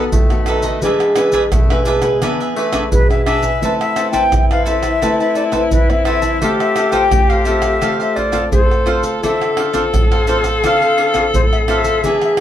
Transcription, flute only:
2.92 B4
3.10 E5
3.25 E5
3.80 E5
4.11 G5
4.51 F5
4.66 E5
5.20 E5
5.36 D5
5.71 B4
5.90 E5
6.06 E5
6.59 E5
6.91 G5
7.29 F5
7.45 E5
8.01 E5
8.16 D5
8.53 C5
9.24 E5
10.28 C5
10.65 F5
11.35 C5
11.52 E5
11.68 E5
12.25 E5

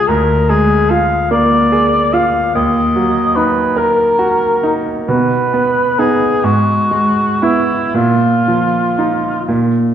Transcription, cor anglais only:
0.08 A#4
0.49 G#4
0.90 F5
1.31 D5
2.13 F5
2.55 D#5
3.36 B4
3.77 A#4
5.09 B4
5.99 G#4
6.45 F#4
7.43 E4
7.96 F4

